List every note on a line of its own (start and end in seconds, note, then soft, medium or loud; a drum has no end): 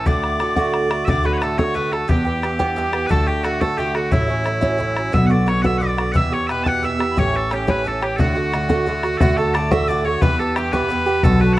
0.06 1.06 D2 medium
0.06 0.38 A2 medium
0.06 0.39 D3 medium
0.06 0.40 A3 medium
0.06 0.41 F#4 medium
0.06 1.05 D5 medium
0.06 0.74 D6 medium
0.06 bodhran medium
0.24 bodhran medium
0.40 0.57 A2 medium
0.40 0.56 D3 medium
0.40 0.56 A3 medium
0.40 0.55 F#4 medium
0.40 bodhran medium
0.56 0.91 A2 medium
0.56 0.91 D3 medium
0.56 0.90 A3 medium
0.56 0.89 F#4 medium
0.56 bodhran medium
0.74 bodhran medium
0.90 1.06 D3 soft
0.90 1.07 A3 soft
0.90 1.07 F#4 medium
0.90 bodhran medium
1.05 2.07 D2 medium
1.05 1.24 A2 medium
1.05 1.25 D3 medium
1.05 1.23 A3 medium
1.05 1.22 F#4 medium
1.05 1.09 E5 loud
1.05 1.27 D6 medium
1.05 bodhran medium
1.09 1.26 D5 loud
1.23 1.41 D3 soft
1.23 1.42 A3 soft
1.23 1.41 F#4 medium
1.23 1.33 B4 medium
1.23 1.43 B5 medium
1.23 bodhran soft
1.33 1.38 C#5 medium
1.38 1.58 A2 medium
1.38 1.43 B4 medium
1.38 1.60 A5 medium
1.38 bodhran medium
1.42 1.58 D3 medium
1.42 1.57 A3 medium
1.42 1.57 F#4 medium
1.42 1.58 A4 medium
1.58 1.73 A2 medium
1.58 1.74 D3 medium
1.58 1.74 A3 medium
1.58 1.75 F#4 medium
1.58 1.75 C#5 medium
1.58 1.65 E6 medium
1.58 bodhran medium
1.64 1.94 C#6 medium
1.74 1.92 A2 medium
1.74 1.92 D3 medium
1.74 1.92 A3 medium
1.74 1.90 F#4 medium
1.74 1.92 B4 medium
1.74 bodhran soft
1.91 2.08 D3 soft
1.91 2.09 A3 soft
1.91 2.09 F#4 medium
1.91 2.09 A4 medium
1.91 2.09 A5 medium
1.91 bodhran medium
2.08 3.09 E2 medium
2.08 2.25 G2 medium
2.08 2.26 E3 medium
2.08 2.25 B3 medium
2.08 3.06 G4 medium
2.08 2.24 G4 medium
2.08 2.45 G5 medium
2.08 bodhran medium
2.25 2.42 E3 soft
2.25 2.43 B3 soft
2.25 2.42 G4 medium
2.25 bodhran soft
2.42 2.60 G2 medium
2.42 2.59 E3 medium
2.42 2.58 B3 medium
2.42 2.58 G4 medium
2.42 bodhran medium
2.59 2.75 G2 medium
2.59 2.75 E3 medium
2.59 2.76 B3 medium
2.59 2.76 G4 medium
2.59 bodhran medium
2.76 2.93 G2 medium
2.76 2.94 E3 medium
2.76 2.93 B3 medium
2.76 2.91 G4 medium
2.76 bodhran soft
2.93 3.09 E3 soft
2.93 3.10 B3 soft
2.93 3.10 G4 medium
2.93 bodhran medium
3.06 3.27 A2 medium
3.06 3.27 D3 medium
3.06 3.27 A3 medium
3.06 3.27 A4 loud
3.06 3.10 B4 loud
3.06 3.29 A5 loud
3.06 bodhran medium
3.11 4.10 D2 medium
3.11 3.25 F#4 medium
3.26 3.43 D3 soft
3.26 3.44 A3 soft
3.26 3.44 F#4 medium
3.26 3.44 G4 loud
3.26 3.46 G5 medium
3.26 bodhran soft
3.43 3.61 A2 medium
3.43 3.61 D3 medium
3.43 3.60 A3 medium
3.43 3.61 F#4 medium
3.43 3.60 F#4 medium
3.43 3.63 F#5 medium
3.43 bodhran medium
3.61 3.77 A2 medium
3.61 3.77 D3 medium
3.61 3.78 A3 medium
3.61 3.78 F#4 medium
3.61 3.78 A4 loud
3.61 3.80 A5 medium
3.61 bodhran medium
3.78 3.95 A2 medium
3.78 3.95 D3 medium
3.78 3.95 A3 medium
3.78 3.93 F#4 medium
3.78 3.95 G4 medium
3.78 3.97 G5 medium
3.78 bodhran soft
3.95 4.12 D3 soft
3.95 4.13 A3 soft
3.95 4.12 F#4 soft
3.95 4.12 F#4 medium
3.95 4.12 F#5 medium
3.95 bodhran medium
4.11 5.12 A1 medium
4.11 4.29 A2 medium
4.11 4.29 F#3 medium
4.11 4.28 C#4 medium
4.11 5.14 E4 medium
4.11 4.26 E4 medium
4.11 4.48 E5 medium
4.11 bodhran medium
4.28 4.44 F#3 soft
4.28 4.45 C#4 soft
4.28 4.45 E4 soft
4.28 bodhran soft
4.44 4.62 A2 medium
4.44 4.61 F#3 medium
4.44 4.61 C#4 medium
4.44 4.60 E4 medium
4.44 bodhran medium
4.61 4.77 A2 medium
4.61 4.77 F#3 medium
4.61 4.78 C#4 medium
4.61 4.79 E4 medium
4.61 bodhran medium
4.78 4.96 A2 medium
4.78 4.96 F#3 medium
4.78 4.96 C#4 medium
4.78 4.94 E4 medium
4.78 bodhran soft
4.96 5.13 F#3 soft
4.96 5.13 C#4 soft
4.96 5.13 E4 soft
4.96 bodhran medium
5.12 6.13 B1 medium
5.12 5.30 B2 medium
5.12 5.30 D3 medium
5.12 5.30 B3 medium
5.12 5.28 F#4 medium
5.12 5.26 E5 medium
5.12 5.32 E6 medium
5.12 bodhran medium
5.26 5.47 F#4 medium
5.26 5.31 F#5 medium
5.31 5.46 D3 soft
5.31 5.47 B3 soft
5.31 5.49 D5 medium
5.31 5.48 D6 medium
5.31 bodhran soft
5.46 5.64 B2 medium
5.46 5.64 D3 medium
5.46 5.63 B3 medium
5.46 5.63 F#4 medium
5.46 5.62 C#5 medium
5.46 5.64 C#6 medium
5.46 bodhran medium
5.62 5.80 D3 medium
5.62 5.81 B3 medium
5.62 5.81 F#4 medium
5.62 5.78 E5 loud
5.62 5.65 F#5 loud
5.62 5.83 E6 medium
5.62 bodhran medium
5.66 5.79 B2 medium
5.78 5.98 B2 medium
5.78 5.98 D3 medium
5.78 5.82 F#5 medium
5.78 5.98 D6 medium
5.78 bodhran soft
5.82 5.98 B3 medium
5.82 5.96 F#4 medium
5.82 6.12 D5 medium
5.98 6.14 D3 soft
5.98 6.14 B3 soft
5.98 6.15 F#4 medium
5.98 bodhran medium
6.12 7.15 E2 medium
6.12 6.32 B2 medium
6.12 6.32 E3 medium
6.12 6.32 B3 medium
6.12 6.30 G4 medium
6.12 6.16 F#5 loud
6.12 6.34 E6 medium
6.12 bodhran medium
6.16 6.33 E5 loud
6.32 6.48 E3 soft
6.32 6.49 B3 soft
6.32 6.49 G4 medium
6.32 6.47 C#5 medium
6.32 6.49 C#6 medium
6.32 bodhran soft
6.47 6.66 B2 medium
6.47 6.66 E3 medium
6.47 6.65 B3 medium
6.47 6.64 B4 medium
6.47 6.50 E5 medium
6.47 6.68 B5 medium
6.47 bodhran medium
6.51 6.65 G4 medium
6.63 6.82 B2 medium
6.63 6.82 E3 medium
6.63 6.83 B3 medium
6.63 6.83 G4 medium
6.63 6.68 A5 loud
6.63 6.84 F#6 loud
6.63 bodhran medium
6.68 6.84 F#5 loud
6.83 7.00 B2 medium
6.83 7.00 E3 medium
6.83 6.99 B3 medium
6.83 6.98 G4 medium
6.83 7.19 E5 loud
6.83 7.00 E6 medium
6.83 bodhran soft
6.99 7.16 E3 soft
6.99 7.17 B3 soft
6.99 7.17 G4 soft
6.99 bodhran medium
7.11 7.19 B5 medium
7.17 8.17 A1 medium
7.17 7.34 A2 medium
7.17 7.34 E3 medium
7.17 7.33 C#4 medium
7.17 7.32 G4 medium
7.17 7.36 C#5 loud
7.17 7.53 C#6 medium
7.17 bodhran medium
7.34 7.51 E3 soft
7.34 7.51 C#4 soft
7.34 7.51 G4 soft
7.34 7.54 A4 medium
7.34 bodhran soft
7.51 7.68 A2 medium
7.51 7.68 E3 medium
7.51 7.67 C#4 medium
7.51 7.66 G4 medium
7.51 7.70 G4 medium
7.51 7.68 G5 medium
7.51 bodhran medium
7.67 7.83 A2 medium
7.67 7.84 E3 medium
7.67 7.85 C#4 medium
7.67 7.85 G4 medium
7.67 7.87 B4 loud
7.67 7.84 B5 medium
7.67 bodhran medium
7.85 8.02 A2 medium
7.85 8.02 E3 medium
7.85 8.02 C#4 medium
7.85 8.00 G4 medium
7.85 8.03 A4 medium
7.85 8.04 A5 medium
7.85 bodhran soft
8.01 8.19 E3 soft
8.01 8.19 C#4 soft
8.01 8.19 G4 soft
8.01 8.16 G4 medium
8.01 8.20 G5 medium
8.01 bodhran medium
8.16 9.19 D2 medium
8.16 8.36 A2 medium
8.16 8.36 D3 medium
8.16 8.35 A3 medium
8.16 9.18 F#4 medium
8.16 8.20 A4 medium
8.16 8.86 F#5 medium
8.16 bodhran medium
8.20 8.34 F#4 medium
8.35 8.52 D3 soft
8.35 8.53 A3 soft
8.35 8.53 F#4 soft
8.35 bodhran soft
8.52 8.69 A2 medium
8.52 8.69 D3 medium
8.52 8.68 A3 medium
8.52 8.68 F#4 medium
8.52 bodhran medium
8.69 8.85 A2 medium
8.69 8.86 D3 medium
8.69 8.87 A3 medium
8.69 8.86 F#4 medium
8.69 bodhran medium
8.86 9.03 A2 medium
8.86 9.04 D3 medium
8.86 9.04 A3 medium
8.86 9.02 F#4 medium
8.86 bodhran soft
9.03 9.20 D3 soft
9.03 9.20 A3 soft
9.03 9.21 F#4 medium
9.03 bodhran medium
9.18 10.20 D2 medium
9.18 9.38 A2 medium
9.18 9.38 D3 medium
9.18 9.37 A3 loud
9.18 9.37 F#4 loud
9.18 9.21 A4 loud
9.18 9.39 F#5 medium
9.18 bodhran loud
9.22 9.36 F#4 medium
9.37 9.54 D3 soft
9.37 9.54 A3 soft
9.37 9.54 F#4 soft
9.37 9.54 A4 medium
9.37 9.73 A5 medium
9.37 bodhran soft
9.54 9.71 A2 medium
9.54 9.71 D3 medium
9.54 9.71 A3 medium
9.54 9.70 F#4 medium
9.54 9.71 D5 medium
9.54 bodhran medium
9.71 9.87 A2 medium
9.71 9.88 D3 medium
9.71 9.88 A3 medium
9.71 9.88 F#4 medium
9.71 9.88 E5 loud
9.71 9.90 E6 medium
9.71 bodhran medium
9.80 bodhran soft
9.88 10.05 A2 medium
9.88 10.06 D3 medium
9.88 10.05 A3 medium
9.88 10.03 F#4 medium
9.88 10.05 D5 medium
9.88 10.07 D6 medium
9.88 bodhran soft
10.05 10.22 D3 soft
10.05 10.22 A3 medium
10.05 10.22 F#4 soft
10.05 10.22 C#5 medium
10.05 10.17 C#6 medium
10.18 10.38 B5 medium
10.18 10.23 C#6 medium
10.22 11.21 E2 medium
10.22 10.39 G2 medium
10.22 10.39 E3 medium
10.22 10.39 B3 medium
10.22 10.38 G4 medium
10.22 10.39 B4 loud
10.22 bodhran medium
10.39 10.56 E3 medium
10.39 10.56 B3 soft
10.39 10.56 G4 medium
10.39 10.56 A4 medium
10.39 10.57 A5 medium
10.39 bodhran soft
10.56 10.73 G2 medium
10.56 10.73 E3 medium
10.56 10.73 B3 medium
10.56 10.72 G4 medium
10.56 10.71 G5 medium
10.56 bodhran medium
10.72 10.88 G2 medium
10.72 10.89 E3 medium
10.72 10.89 B3 medium
10.72 10.90 G4 medium
10.72 11.23 B4 loud
10.72 10.78 C#6 medium
10.72 bodhran medium
10.77 11.25 B5 medium
10.81 bodhran soft
10.89 11.06 G2 medium
10.89 11.07 E3 medium
10.89 11.06 B3 medium
10.89 11.05 G4 medium
10.89 bodhran soft
11.06 11.24 E3 soft
11.06 11.24 B3 medium
11.06 11.23 G4 medium
11.23 11.59 B1 medium
11.23 11.41 B2 medium
11.23 11.41 D3 medium
11.23 11.40 B3 medium
11.23 11.38 F#4 medium
11.23 11.40 A4 loud
11.23 11.34 A5 medium
11.23 bodhran medium
11.35 11.46 A5 medium
11.40 11.57 D3 soft
11.40 11.58 B3 soft
11.40 11.57 F#4 medium
11.40 11.53 B4 medium
11.40 bodhran soft
11.46 11.58 A5 loud
11.53 11.58 F#5 loud